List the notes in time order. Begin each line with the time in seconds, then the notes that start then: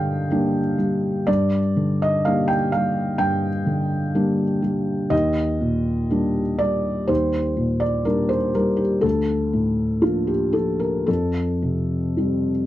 Already playing: G2 D3 G3 A#3 D4 D#5 F5 G5
0.30 G3 A#3 D4
0.78 G3
1.27 G2 D5
1.77 D3
2.02 D#5
2.25 G3 A#3 D4 F5
2.48 G5
2.72 G3 F5
3.18 G2 G5
3.66 D3
4.15 G3 A#3 D4
4.62 G3
5.10 D#2 D#5
5.61 A#2
6.11 G3 A#3 D4
6.59 G3 D5
7.08 D#2 C5
7.57 A#2
7.80 D5
8.05 G3 A#3 D4 A#4
8.29 C5
8.55 G3 A#4
8.77 G4
9.01 D2 A4
9.53 A2
10.02 F3 A#3 D4 F4
10.27 G4
10.53 F3 A4
10.80 A#4
11.07 F2 A4
11.62 C3
12.17 F3 G3 C4